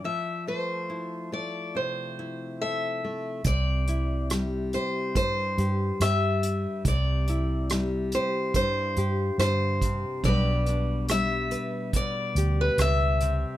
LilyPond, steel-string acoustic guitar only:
\new Staff \with { instrumentName = "Steel-string acoustic guitar" } { \time 4/4 \key c \major \tempo 4 = 71 e''8 c''4 d''8 c''4 e''4 | d''4 r8 c''8 c''4 e''4 | d''4 r8 c''8 c''4 c''4 | d''4 e''4 d''8. b'16 e''4 | }